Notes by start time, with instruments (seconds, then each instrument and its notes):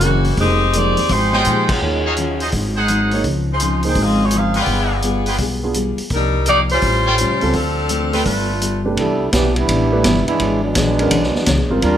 Already playing: upright bass F#1, saxophone section E3 A#3 C#4 F#4
0.01 steel-string acoustic guitar F#2 E3 A#3 C4, grand piano G#3 C#4 F#4 A#4, closed hi-hat
0.24 open hi-hat
0.37 upright bass F1, steel-string acoustic guitar F3 G#3 D#4 G4, grand piano A#3 D#4 G#4 C5, saxophone section C4 G4 G#4 D#5, kick, open hi-hat
0.73 steel-string acoustic guitar F3 G#3 D#4 G4, grand piano A#3 D#4 G#4 C5, saxophone section C4 G4 G#4 D5, closed hi-hat
0.97 upright bass D#2, open hi-hat
1.09 upright bass G#1, steel-string acoustic guitar F3 G#3 D#4 G4, saxophone section G#3 D#4 G4 C5, kick, open hi-hat
1.33 trumpet section F4 G4 D#5 G5, snare
1.45 upright bass A#2, steel-string acoustic guitar F3 G#3 D#4 G4, closed hi-hat
1.69 saxophone section F#3 C#4 F4 G#4, kick, crash
1.82 upright bass D#2, steel-string acoustic guitar D#3 F#3 C#4 F4, grand piano A#3 D#4 G#4 C#5
2.05 trumpet section D#4 F#4 C#5 F5
2.16 steel-string acoustic guitar D#3 F#3 C#4 F4, closed hi-hat
2.40 trumpet section D#4 G#4 C5 D#5, open hi-hat
2.52 upright bass G#1, steel-string acoustic guitar G#2 F#3 C4 D#4, kick, open hi-hat
2.76 trumpet section D#4 G#4 C5 F#5
2.88 steel-string acoustic guitar G#2 F#3 C4 D#4, closed hi-hat
3.11 grand piano A#3 D#4 G#4 C#5, open hi-hat
3.24 upright bass C#2, steel-string acoustic guitar C#3 F3 C4 D#4, kick, open hi-hat
3.52 saxophone section G#3 D#4 F4 C5
3.60 steel-string acoustic guitar C#3 F3 C4 D#4, closed hi-hat
3.83 grand piano A#3 D#4 G#4 C5, open hi-hat
3.88 saxophone section D#4 G#4 C5 G5
3.95 upright bass G#1, steel-string acoustic guitar C#3 F3 C4 D#4, kick, open hi-hat
4.01 saxophone section C4 F4 G#4 D#5
4.24 saxophone section G#3 D#4 F4 C#5
4.31 steel-string acoustic guitar C#3 F3 C4 D#4, closed hi-hat
4.36 saxophone section D#4 G#4 C5 F5
4.54 trumpet section F4 G#4 B4 G5, open hi-hat
4.59 saxophone section B3 F4 G#4 D5
4.66 upright bass G1, steel-string acoustic guitar G3 B3 F4 G#4, kick, open hi-hat
5.02 steel-string acoustic guitar G3 B3 F4 G#4, closed hi-hat
5.26 trumpet section F4 G#4 B4 G5, open hi-hat
5.38 upright bass B1, steel-string acoustic guitar G3 B3 F4 G#4, kick, open hi-hat
5.63 grand piano B3 D4 F4 G#4
5.74 steel-string acoustic guitar G3 B3 F4 G#4, closed hi-hat
5.98 muted upright bass stroke, open hi-hat
6.10 upright bass C2, steel-string acoustic guitar C3 F3 A#3 D#4, saxophone section G3 D4 D#4 A#4, kick, open hi-hat
6.46 steel-string acoustic guitar C3 F3 A#3 D#4, saxophone section A#3 D#4 G4 D5, trumpet section D#4 A#4 D5 F5, closed hi-hat
6.69 saxophone section G3 C#4 F4 C5, open hi-hat
6.82 upright bass A1, steel-string acoustic guitar A2 G3 C#4, kick, open hi-hat
6.86 steel-string acoustic guitar F4
7.06 trumpet section F4 A4 C#5 G5
7.18 steel-string acoustic guitar A2 G3 C#4 F4, closed hi-hat
7.30 upright bass C2
7.41 upright bass C#2, grand piano G3 C4 F4 A4, open hi-hat
7.53 upright bass D2, steel-string acoustic guitar D3 A3 C4 F4, saxophone section F3 C4 D4 A4, kick, open hi-hat
7.89 steel-string acoustic guitar D3 A3 C4 F4, closed hi-hat
8.13 grand piano A3 D4 G4 B4, trumpet section F4 A4 B4 G5, open hi-hat
8.25 upright bass G1, steel-string acoustic guitar G3 B3 F4 A4, saxophone section A3 D4 F4 B4, kick, open hi-hat
8.61 steel-string acoustic guitar G3 B3 F4 A4, closed hi-hat
8.85 grand piano C3 A3 D4 G4 B4
8.97 upright bass C2, steel-string acoustic guitar C3 E3 B3 D4, trombone section G3 D4 E4 A4, kick, ride
9.32 upright bass B1, steel-string acoustic guitar C3 E3 B3 D4, trombone section E3 B3 D4 G4, kick, snare, hi-hat pedal, ride
9.56 trombone section G3 B3 D4 E4, ride
9.68 upright bass A1, steel-string acoustic guitar C3 E3 B3 D4, kick, ride
9.92 grand piano A3 D4 G4 B4
10.04 upright bass G1, steel-string acoustic guitar C3 E3 B3 D4, kick, snare, hi-hat pedal, ride
10.27 trombone section G#3 B3 D4 E4, ride
10.40 upright bass G#1, steel-string acoustic guitar E3 D4 G#4 C#5, kick, ride
10.63 trombone section F#3 G#3 B3 D4
10.75 upright bass A#1, steel-string acoustic guitar E3 D4 G#4 C#5, kick, snare, hi-hat pedal, ride
10.99 grand piano G#3 C#4 F#4 A#4, ride
11.11 upright bass B1, steel-string acoustic guitar E3 D4 G#4 C#5, kick, ride
11.23 snare
11.35 muted upright bass stroke, snare
11.46 upright bass C#2, steel-string acoustic guitar E3 D4 G#4 C#5, kick, snare, hi-hat pedal, ride
11.60 upright bass B1
11.70 upright bass G#1, grand piano G3 C4 F4 A#4
11.82 upright bass D#2, steel-string acoustic guitar D#3 G3 D4 F4, trombone section G3 D4 F4 A#4, kick, ride